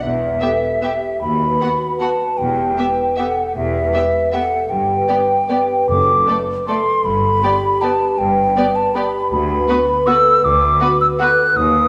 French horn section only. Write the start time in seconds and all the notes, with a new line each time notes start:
0.02 B4
0.41 A4
0.83 G4
1.22 F#4
1.61 F#4
2.41 G4
2.78 B4
3.19 A4
3.57 G4
3.96 B4
4.34 A4
4.71 G4
5.10 B4
5.50 G4
5.89 A4
6.28 B4
6.67 A4
7.42 G4
8.20 B4
8.56 B4
8.95 G4
9.32 F#4
9.69 B4
10.07 A4
10.44 B4
10.82 F#4
11.21 A4
11.57 B4